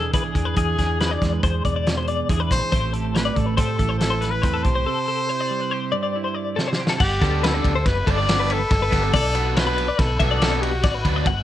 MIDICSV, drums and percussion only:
0, 0, Header, 1, 2, 480
1, 0, Start_track
1, 0, Tempo, 429799
1, 634, Time_signature, 5, 2, 24, 8
1, 7353, Tempo, 425532
1, 12819, End_track
2, 0, Start_track
2, 0, Title_t, "Drums"
2, 148, Note_on_c, 9, 42, 83
2, 152, Note_on_c, 9, 36, 102
2, 259, Note_off_c, 9, 42, 0
2, 263, Note_off_c, 9, 36, 0
2, 392, Note_on_c, 9, 36, 74
2, 396, Note_on_c, 9, 42, 58
2, 504, Note_off_c, 9, 36, 0
2, 508, Note_off_c, 9, 42, 0
2, 628, Note_on_c, 9, 42, 80
2, 634, Note_on_c, 9, 36, 96
2, 740, Note_off_c, 9, 42, 0
2, 746, Note_off_c, 9, 36, 0
2, 878, Note_on_c, 9, 36, 58
2, 879, Note_on_c, 9, 42, 59
2, 888, Note_on_c, 9, 38, 32
2, 989, Note_off_c, 9, 36, 0
2, 991, Note_off_c, 9, 42, 0
2, 1000, Note_off_c, 9, 38, 0
2, 1121, Note_on_c, 9, 42, 66
2, 1130, Note_on_c, 9, 38, 105
2, 1233, Note_off_c, 9, 42, 0
2, 1241, Note_off_c, 9, 38, 0
2, 1360, Note_on_c, 9, 36, 69
2, 1363, Note_on_c, 9, 42, 56
2, 1372, Note_on_c, 9, 38, 33
2, 1472, Note_off_c, 9, 36, 0
2, 1475, Note_off_c, 9, 42, 0
2, 1484, Note_off_c, 9, 38, 0
2, 1598, Note_on_c, 9, 42, 72
2, 1600, Note_on_c, 9, 36, 103
2, 1710, Note_off_c, 9, 42, 0
2, 1712, Note_off_c, 9, 36, 0
2, 1841, Note_on_c, 9, 36, 72
2, 1841, Note_on_c, 9, 42, 61
2, 1953, Note_off_c, 9, 36, 0
2, 1953, Note_off_c, 9, 42, 0
2, 2082, Note_on_c, 9, 42, 74
2, 2091, Note_on_c, 9, 38, 104
2, 2194, Note_off_c, 9, 42, 0
2, 2203, Note_off_c, 9, 38, 0
2, 2317, Note_on_c, 9, 42, 55
2, 2428, Note_off_c, 9, 42, 0
2, 2562, Note_on_c, 9, 36, 102
2, 2565, Note_on_c, 9, 42, 80
2, 2673, Note_off_c, 9, 36, 0
2, 2677, Note_off_c, 9, 42, 0
2, 2801, Note_on_c, 9, 36, 83
2, 2803, Note_on_c, 9, 42, 59
2, 2812, Note_on_c, 9, 38, 32
2, 2913, Note_off_c, 9, 36, 0
2, 2915, Note_off_c, 9, 42, 0
2, 2924, Note_off_c, 9, 38, 0
2, 3041, Note_on_c, 9, 36, 106
2, 3045, Note_on_c, 9, 42, 82
2, 3153, Note_off_c, 9, 36, 0
2, 3157, Note_off_c, 9, 42, 0
2, 3276, Note_on_c, 9, 42, 58
2, 3388, Note_off_c, 9, 42, 0
2, 3522, Note_on_c, 9, 42, 77
2, 3531, Note_on_c, 9, 38, 97
2, 3633, Note_off_c, 9, 42, 0
2, 3642, Note_off_c, 9, 38, 0
2, 3754, Note_on_c, 9, 42, 58
2, 3757, Note_on_c, 9, 36, 63
2, 3866, Note_off_c, 9, 42, 0
2, 3868, Note_off_c, 9, 36, 0
2, 3994, Note_on_c, 9, 42, 94
2, 3996, Note_on_c, 9, 36, 108
2, 4105, Note_off_c, 9, 42, 0
2, 4108, Note_off_c, 9, 36, 0
2, 4234, Note_on_c, 9, 42, 66
2, 4236, Note_on_c, 9, 36, 78
2, 4346, Note_off_c, 9, 42, 0
2, 4348, Note_off_c, 9, 36, 0
2, 4472, Note_on_c, 9, 42, 85
2, 4481, Note_on_c, 9, 38, 95
2, 4584, Note_off_c, 9, 42, 0
2, 4593, Note_off_c, 9, 38, 0
2, 4708, Note_on_c, 9, 42, 57
2, 4716, Note_on_c, 9, 38, 31
2, 4819, Note_off_c, 9, 42, 0
2, 4828, Note_off_c, 9, 38, 0
2, 4950, Note_on_c, 9, 42, 81
2, 4952, Note_on_c, 9, 36, 117
2, 5062, Note_off_c, 9, 42, 0
2, 5063, Note_off_c, 9, 36, 0
2, 5184, Note_on_c, 9, 42, 55
2, 5191, Note_on_c, 9, 36, 79
2, 5296, Note_off_c, 9, 42, 0
2, 5302, Note_off_c, 9, 36, 0
2, 7353, Note_on_c, 9, 38, 59
2, 7465, Note_off_c, 9, 38, 0
2, 7514, Note_on_c, 9, 38, 73
2, 7627, Note_off_c, 9, 38, 0
2, 7674, Note_on_c, 9, 38, 102
2, 7786, Note_off_c, 9, 38, 0
2, 7822, Note_on_c, 9, 49, 127
2, 7824, Note_on_c, 9, 36, 127
2, 7935, Note_off_c, 9, 49, 0
2, 7937, Note_off_c, 9, 36, 0
2, 8063, Note_on_c, 9, 51, 72
2, 8065, Note_on_c, 9, 36, 79
2, 8072, Note_on_c, 9, 38, 34
2, 8176, Note_off_c, 9, 51, 0
2, 8177, Note_off_c, 9, 36, 0
2, 8185, Note_off_c, 9, 38, 0
2, 8315, Note_on_c, 9, 51, 120
2, 8324, Note_on_c, 9, 38, 117
2, 8427, Note_off_c, 9, 51, 0
2, 8436, Note_off_c, 9, 38, 0
2, 8550, Note_on_c, 9, 36, 71
2, 8554, Note_on_c, 9, 51, 74
2, 8663, Note_off_c, 9, 36, 0
2, 8667, Note_off_c, 9, 51, 0
2, 8789, Note_on_c, 9, 51, 105
2, 8790, Note_on_c, 9, 36, 113
2, 8798, Note_on_c, 9, 38, 38
2, 8902, Note_off_c, 9, 51, 0
2, 8903, Note_off_c, 9, 36, 0
2, 8911, Note_off_c, 9, 38, 0
2, 9031, Note_on_c, 9, 36, 81
2, 9035, Note_on_c, 9, 51, 86
2, 9144, Note_off_c, 9, 36, 0
2, 9148, Note_off_c, 9, 51, 0
2, 9273, Note_on_c, 9, 51, 99
2, 9282, Note_on_c, 9, 38, 120
2, 9385, Note_off_c, 9, 51, 0
2, 9394, Note_off_c, 9, 38, 0
2, 9512, Note_on_c, 9, 51, 78
2, 9624, Note_off_c, 9, 51, 0
2, 9744, Note_on_c, 9, 51, 114
2, 9750, Note_on_c, 9, 36, 113
2, 9754, Note_on_c, 9, 38, 37
2, 9857, Note_off_c, 9, 51, 0
2, 9863, Note_off_c, 9, 36, 0
2, 9866, Note_off_c, 9, 38, 0
2, 9993, Note_on_c, 9, 36, 82
2, 9995, Note_on_c, 9, 51, 83
2, 10004, Note_on_c, 9, 38, 34
2, 10106, Note_off_c, 9, 36, 0
2, 10108, Note_off_c, 9, 51, 0
2, 10117, Note_off_c, 9, 38, 0
2, 10227, Note_on_c, 9, 51, 117
2, 10233, Note_on_c, 9, 36, 112
2, 10340, Note_off_c, 9, 51, 0
2, 10345, Note_off_c, 9, 36, 0
2, 10470, Note_on_c, 9, 51, 76
2, 10582, Note_off_c, 9, 51, 0
2, 10715, Note_on_c, 9, 51, 104
2, 10724, Note_on_c, 9, 38, 117
2, 10828, Note_off_c, 9, 51, 0
2, 10837, Note_off_c, 9, 38, 0
2, 10956, Note_on_c, 9, 51, 79
2, 11069, Note_off_c, 9, 51, 0
2, 11193, Note_on_c, 9, 51, 114
2, 11194, Note_on_c, 9, 36, 117
2, 11202, Note_on_c, 9, 38, 39
2, 11306, Note_off_c, 9, 51, 0
2, 11307, Note_off_c, 9, 36, 0
2, 11315, Note_off_c, 9, 38, 0
2, 11431, Note_on_c, 9, 36, 89
2, 11431, Note_on_c, 9, 51, 91
2, 11544, Note_off_c, 9, 36, 0
2, 11544, Note_off_c, 9, 51, 0
2, 11674, Note_on_c, 9, 51, 120
2, 11683, Note_on_c, 9, 38, 114
2, 11787, Note_off_c, 9, 51, 0
2, 11796, Note_off_c, 9, 38, 0
2, 11915, Note_on_c, 9, 51, 85
2, 12028, Note_off_c, 9, 51, 0
2, 12146, Note_on_c, 9, 51, 124
2, 12150, Note_on_c, 9, 36, 121
2, 12155, Note_on_c, 9, 38, 38
2, 12259, Note_off_c, 9, 51, 0
2, 12263, Note_off_c, 9, 36, 0
2, 12268, Note_off_c, 9, 38, 0
2, 12389, Note_on_c, 9, 36, 79
2, 12390, Note_on_c, 9, 51, 85
2, 12502, Note_off_c, 9, 36, 0
2, 12503, Note_off_c, 9, 51, 0
2, 12623, Note_on_c, 9, 51, 118
2, 12626, Note_on_c, 9, 36, 113
2, 12736, Note_off_c, 9, 51, 0
2, 12739, Note_off_c, 9, 36, 0
2, 12819, End_track
0, 0, End_of_file